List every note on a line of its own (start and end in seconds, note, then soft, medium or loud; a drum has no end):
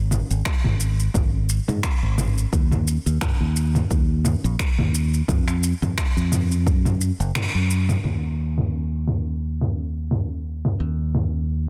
0.00 0.20 G#1 medium
0.11 mid tom medium
0.11 shaker medium
0.31 0.41 G#1 loud
0.31 shaker soft
0.45 finger snap medium
0.45 kick medium
0.45 shaker soft
0.64 1.07 G#1 medium
0.64 mid tom medium
0.80 shaker medium
1.00 shaker soft
1.14 1.58 G#1 medium
1.14 kick loud
1.14 mid tom medium
1.14 shaker soft
1.49 shaker medium
1.68 1.79 G#2 loud
1.68 mid tom medium
1.68 shaker soft
1.83 finger snap medium
1.83 kick medium
1.83 shaker soft
2.03 2.45 G#1 medium
2.18 mid tom medium
2.18 shaker medium
2.38 shaker soft
2.53 2.96 D#2 medium
2.53 kick loud
2.53 shaker soft
2.72 mid tom medium
2.72 shaker soft
2.88 shaker medium
3.06 3.17 D#2 loud
3.06 shaker soft
3.21 finger snap medium
3.21 kick medium
3.21 mid tom medium
3.21 shaker soft
3.41 3.82 D#2 medium
3.56 shaker medium
3.75 mid tom medium
3.75 shaker soft
3.91 4.34 D#2 medium
3.91 kick loud
3.91 shaker soft
4.25 mid tom medium
4.25 shaker medium
4.44 4.55 A#1 loud
4.44 shaker soft
4.59 finger snap loud
4.59 kick medium
4.59 shaker soft
4.79 5.21 D#2 medium
4.79 mid tom medium
4.95 shaker medium
5.14 shaker soft
5.28 5.72 F2 medium
5.28 kick loud
5.28 mid tom medium
5.28 shaker soft
5.48 finger snap soft
5.48 shaker soft
5.63 shaker medium
5.82 5.92 F2 loud
5.82 mid tom medium
5.82 shaker soft
5.98 finger snap medium
5.98 kick medium
5.98 shaker soft
6.17 6.67 F2 medium
6.17 shaker soft
6.32 mid tom medium
6.32 shaker medium
6.52 shaker soft
6.67 7.10 F#2 medium
6.67 kick loud
6.67 shaker soft
6.85 mid tom medium
6.85 shaker soft
7.01 shaker medium
7.20 7.30 F#1 loud
7.20 shaker soft
7.35 finger snap loud
7.35 mid tom medium
7.35 shaker soft
7.55 7.96 F#2 medium
7.71 shaker medium
7.89 mid tom medium
7.89 shaker soft
8.04 10.77 D#2 medium
8.04 mid tom medium
8.04 crash medium
8.58 mid tom medium
9.07 mid tom medium
9.61 mid tom medium
10.11 mid tom medium
10.65 mid tom medium
10.80 11.69 D#2 medium
11.15 mid tom medium